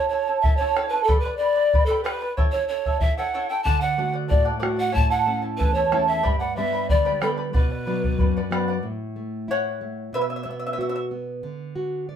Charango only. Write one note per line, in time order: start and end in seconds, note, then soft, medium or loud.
0.00 0.11 E4 soft
0.00 0.11 A4 soft
0.00 0.11 A5 medium
0.11 0.28 E4 medium
0.11 0.28 A4 medium
0.11 0.27 E5 soft
0.11 0.26 A5 medium
0.28 0.43 E4 soft
0.28 0.44 A4 soft
0.28 0.44 A5 medium
0.44 0.60 E4 medium
0.44 0.59 A4 medium
0.44 0.59 E5 medium
0.44 0.59 A5 medium
0.60 0.75 E4 medium
0.60 0.76 A4 medium
0.60 0.74 C#5 medium
0.60 0.75 E5 medium
0.60 0.76 A5 medium
0.76 0.92 E4 medium
0.76 0.92 A4 medium
0.76 0.92 C#5 medium
0.76 0.92 E5 medium
0.76 0.91 A5 medium
0.92 1.08 E4 soft
0.92 1.08 A4 soft
0.92 1.08 A5 medium
1.08 1.24 G4 medium
1.08 1.24 B4 medium
1.08 1.24 D5 medium
1.08 1.24 G5 medium
1.08 1.23 B5 medium
1.24 1.40 B4 medium
1.24 1.40 D5 medium
1.24 1.40 B5 medium
1.40 1.56 B4 medium
1.40 1.55 D5 medium
1.40 1.56 G5 medium
1.40 1.54 B5 medium
1.56 1.73 B4 soft
1.56 1.73 D5 medium
1.56 1.72 B5 medium
1.73 1.89 B4 medium
1.73 1.89 D5 medium
1.73 1.89 G5 medium
1.73 1.88 B5 medium
1.89 2.03 G4 medium
1.89 2.04 B4 medium
1.89 2.04 D5 medium
1.89 2.03 G5 medium
1.89 2.04 B5 medium
2.04 2.21 G4 medium
2.04 2.21 B4 medium
2.04 2.20 D5 medium
2.04 2.21 G5 medium
2.04 2.20 B5 medium
2.21 2.37 B4 soft
2.21 2.37 D5 soft
2.21 2.37 B5 medium
2.37 2.54 E4 medium
2.37 2.53 A4 medium
2.37 2.53 C#5 medium
2.37 2.52 E5 medium
2.37 2.53 G5 medium
2.54 2.69 E4 soft
2.54 2.70 A4 soft
2.54 2.70 E5 medium
2.70 2.86 E4 medium
2.70 2.86 A4 medium
2.70 2.85 E5 medium
2.70 2.86 G5 soft
2.86 3.01 E4 soft
2.86 3.02 A4 soft
2.86 3.02 E5 medium
3.02 3.18 E4 medium
3.02 3.17 A4 medium
3.02 3.16 E5 medium
3.02 3.17 G5 medium
3.18 3.33 E4 medium
3.18 3.34 A4 medium
3.18 3.33 C#5 soft
3.18 3.34 E5 medium
3.18 3.33 G5 medium
3.34 3.50 E4 medium
3.34 3.50 A4 medium
3.34 3.50 C#5 medium
3.34 3.48 E5 medium
3.34 3.51 G5 medium
3.49 3.67 E4 soft
3.49 3.64 A4 medium
3.49 3.66 E5 medium
3.65 3.82 A4 medium
3.65 3.82 D5 medium
3.65 3.81 F#5 medium
3.82 3.97 D5 soft
3.82 3.98 F#5 medium
3.98 4.15 A4 soft
3.98 4.14 D5 soft
3.98 4.12 F#5 medium
4.13 4.28 D5 soft
4.13 4.28 F#5 medium
4.28 4.44 A4 medium
4.28 4.44 D5 medium
4.28 4.44 F#5 medium
4.45 4.58 A4 medium
4.45 4.59 D5 medium
4.45 4.59 F#5 medium
4.59 4.78 A4 medium
4.59 4.76 D5 medium
4.59 4.75 F#5 medium
4.76 4.92 D5 soft
4.76 4.92 F#5 soft
4.92 5.09 E4 medium
4.92 5.09 A4 medium
4.92 5.10 C#5 medium
4.92 5.10 E5 medium
4.92 5.08 A5 medium
5.09 5.25 E4 soft
5.09 5.25 A4 soft
5.09 5.26 A5 medium
5.26 5.42 E4 medium
5.26 5.41 A4 medium
5.26 5.43 E5 medium
5.26 5.41 A5 medium
5.42 5.58 E4 soft
5.42 5.59 A4 soft
5.42 5.58 A5 medium
5.59 5.75 E4 medium
5.59 5.75 A4 medium
5.59 5.76 E5 medium
5.59 5.75 A5 medium
5.76 5.91 E4 medium
5.76 5.91 A4 medium
5.76 5.90 C#5 medium
5.76 5.91 E5 medium
5.76 5.91 A5 medium
5.92 6.08 E4 medium
5.92 6.07 A4 medium
5.92 6.09 C#5 medium
5.92 6.09 E5 medium
5.92 6.07 A5 medium
6.08 6.23 E4 soft
6.08 6.23 A4 soft
6.08 6.24 A5 medium
6.23 6.40 G4 medium
6.23 6.40 B4 medium
6.23 6.39 D5 medium
6.23 6.41 G5 medium
6.23 6.38 B5 medium
6.39 6.55 B4 soft
6.39 6.56 D5 medium
6.39 6.57 B5 medium
6.56 6.73 B4 medium
6.56 6.73 D5 medium
6.56 6.73 G5 medium
6.56 6.72 B5 medium
6.73 6.89 B4 soft
6.73 6.90 D5 soft
6.73 6.90 B5 medium
6.90 7.04 B4 medium
6.90 7.05 D5 medium
6.90 7.05 G5 medium
6.90 7.04 B5 medium
7.05 7.20 G4 medium
7.05 7.20 B4 medium
7.05 7.21 D5 medium
7.05 7.20 G5 medium
7.05 7.21 B5 medium
7.21 7.38 G4 medium
7.21 7.37 B4 medium
7.21 7.37 D5 medium
7.21 7.38 G5 medium
7.21 7.36 B5 medium
7.37 7.52 B4 soft
7.37 7.53 D5 medium
7.37 7.54 B5 medium
7.53 7.70 B4 medium
7.53 7.70 D5 medium
7.53 7.69 F#5 medium
7.70 7.86 D5 soft
7.70 7.86 F#5 medium
7.86 8.03 B4 soft
7.86 8.03 D5 medium
7.86 8.03 F#5 medium
8.04 8.19 D5 soft
8.04 8.19 F#5 medium
8.19 8.36 B4 medium
8.19 8.36 D5 medium
8.19 8.35 F#5 medium
8.37 8.51 B4 medium
8.37 8.51 D5 medium
8.37 8.52 F#5 medium
8.52 8.69 B4 medium
8.52 8.69 D5 medium
8.52 8.67 F#5 medium
8.68 8.85 D5 soft
8.68 8.84 F#5 medium
9.51 10.11 C#5 medium
9.51 10.17 F#5 medium
10.14 10.22 B4 medium
10.14 10.20 E5 medium
10.21 10.29 E5 medium
10.30 10.35 E5 medium
10.36 10.42 E5 soft
10.43 10.49 E5 medium
10.51 10.58 E5 soft
10.59 10.65 E5 soft
10.67 10.72 E5 medium
10.73 10.80 E5 medium
10.81 10.88 E5 soft
10.89 10.94 E5 medium
10.96 11.03 E5 medium